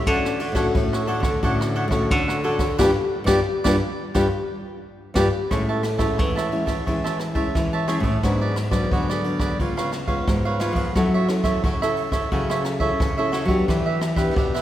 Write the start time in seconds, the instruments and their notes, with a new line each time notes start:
0.06 nylon-string guitar D3 C#4 F#4 A4, cavaquinho D4 A4 C#5 F#5, kick, ride
0.25 cross-stick
0.39 cavaquinho D4 A4 C#5 F#5, ride
0.52 nylon-string guitar A2 C#4 F#4, cavaquinho D4 A4 C#5 F#5, kick, cross-stick, ride
0.56 nylon-string guitar A4
0.75 nylon-string guitar A2, kick, ride
0.93 cavaquinho A4 C#5 F#5, cross-stick
1.07 nylon-string guitar C#4 F#4 A4, cavaquinho D4 A4 C#5 F#5, ride
1.20 nylon-string guitar D3, cavaquinho C#5 F#5, kick, cross-stick, ride
1.24 cavaquinho A4
1.43 nylon-string guitar A2 D3 C#4 F#4 A4, cavaquinho D4 A4 C#5 F#5, kick, ride
1.61 cross-stick
1.75 cavaquinho D4 A4 C#5 F#5, ride
1.88 nylon-string guitar A2 C#4 F#4, cavaquinho C#5 F#5, kick, cross-stick, ride
1.92 cavaquinho A4, nylon-string guitar A4
2.11 nylon-string guitar A2 D3, kick, ride
2.28 cavaquinho A4 C#5 F#5, cross-stick
2.43 nylon-string guitar C#4 F#4 A4, cavaquinho D4 A4 C#5 F#5, ride
2.58 cavaquinho A4 C#5 F#5, kick, cross-stick, ride
2.79 nylon-string guitar G2 D4 F4 G4, cavaquinho G4 B4 D5, kick, snare
3.24 nylon-string guitar G2 D4 F4 G4, cavaquinho G4 B4 D5, kick, snare
3.64 nylon-string guitar G2 D4 F4 G4, cavaquinho G4 B4 D5, kick, snare
4.14 nylon-string guitar G2 D4 F4 G4, cavaquinho G4 B4 D5, kick, snare
5.14 nylon-string guitar G2 D4 F4 G4, cavaquinho G4 B4 D5, kick, snare
5.51 nylon-string guitar A2 G#3 C#4 E4, cavaquinho G#4 C#5 E5 A5, kick, cross-stick, ride
5.69 cavaquinho C#5 E5 A5
5.83 muted cavaquinho stroke, cross-stick, ride
5.98 nylon-string guitar G#3 C#4 E4, cavaquinho C#5 E5 A5, kick, cross-stick, ride
6.18 nylon-string guitar E3, cavaquinho G#4 C#5 E5 A5, kick, ride
6.36 cavaquinho C#5 E5 A5, cross-stick
6.52 nylon-string guitar G#3 C#4 E4, ride
6.66 cavaquinho C#5 E5 A5, kick, cross-stick, ride
6.86 nylon-string guitar A2 E3 G#3 C#4 E4, cavaquinho G#4 C#5 E5 A5, kick, ride
7.04 cavaquinho C#5 E5 A5, cross-stick
7.19 muted cavaquinho stroke, cross-stick, ride
7.35 nylon-string guitar G#3 C#4 E4, cavaquinho C#5 E5 A5, kick, ride
7.55 nylon-string guitar E3, kick, cross-stick, ride
7.73 cavaquinho C#5 E5 A5
7.88 nylon-string guitar G#3 C#4 E4, cavaquinho G#4 C#5 E5 A5, cross-stick, ride
8.00 nylon-string guitar A2, cavaquinho E5 A5, kick, ride
8.04 cavaquinho C#5
8.23 nylon-string guitar G#2 F#3 B3 D4, cavaquinho F#4 G#4 B4 D5, kick, cross-stick, ride
8.41 cavaquinho G#4 B4 D5
8.56 muted cavaquinho stroke, cross-stick, ride
8.71 nylon-string guitar F#3 B3 D4, cavaquinho G#4 B4 D5, kick, cross-stick, ride
8.91 nylon-string guitar G#2 D3, cavaquinho F#4 G#4 B4 D5, kick, ride
9.09 cavaquinho G#4 B4 D5, cross-stick
9.24 nylon-string guitar F#3 B3 D4, ride
9.40 cavaquinho G#4 B4 D5, kick, cross-stick, ride
9.59 nylon-string guitar C#3 G#3 B3 F4, cavaquinho F4 B4 C#5 F5, kick, ride
9.77 cavaquinho B4 C#5 F5, cross-stick
9.92 muted cavaquinho stroke, cross-stick, ride
10.07 nylon-string guitar G#3 B3 F4, cavaquinho B4 C#5 F5, kick, ride
10.27 nylon-string guitar G#2, kick, cross-stick, ride
10.45 cavaquinho B4 C#5 F5
10.60 nylon-string guitar G#3 B3 F4, cavaquinho F4 B4 C#5 F5, cross-stick, ride
10.73 nylon-string guitar F3, cavaquinho B4 C#5 F5, kick, ride
10.95 nylon-string guitar F#3 C#4 E4 A4, cavaquinho F#4 A4 C#5 E5, kick, cross-stick, ride
11.14 cavaquinho A4 C#5 E5
11.28 nylon-string guitar C#4 E4 A4, muted cavaquinho stroke, cross-stick, ride
11.44 cavaquinho A4 C#5 E5, kick, cross-stick, ride
11.64 nylon-string guitar C#3, cavaquinho F#4 A4 C#5 E5, kick, ride
11.82 nylon-string guitar C#4 E4 A4, cavaquinho A4 C#5 E5, cross-stick
11.96 ride
12.12 cavaquinho A4 C#5 E5, kick, cross-stick, ride
12.32 nylon-string guitar C#3 F#3 C#4 E4 A4, cavaquinho F#4 A4 C#5 E5, kick, ride
12.50 cavaquinho A4 C#5 E5, cross-stick
12.64 muted cavaquinho stroke, cross-stick, ride
12.80 nylon-string guitar C#4 E4 A4, cavaquinho A4 C#5 E5, kick, ride
13.00 nylon-string guitar C#3, kick, cross-stick, ride
13.18 nylon-string guitar C#4 E4 A4, cavaquinho A4 C#5 E5
13.32 cavaquinho F#4 A4 C#5 E5, cross-stick, ride
13.45 nylon-string guitar F#3 B3 D4, cavaquinho C#5 E5, kick, ride
13.49 nylon-string guitar G4, cavaquinho A4
13.68 nylon-string guitar E3, cavaquinho D4 G4 B4 E5, kick, cross-stick, ride
13.86 cavaquinho G4 B4 E5
14.01 muted cavaquinho stroke, cross-stick, ride
14.16 nylon-string guitar B3 D4 G4, cavaquinho G4 B4 E5, kick, cross-stick, ride
14.36 nylon-string guitar B2, cavaquinho D4 G4 B4 E5, kick, ride
14.54 cavaquinho G4 B4 E5, cross-stick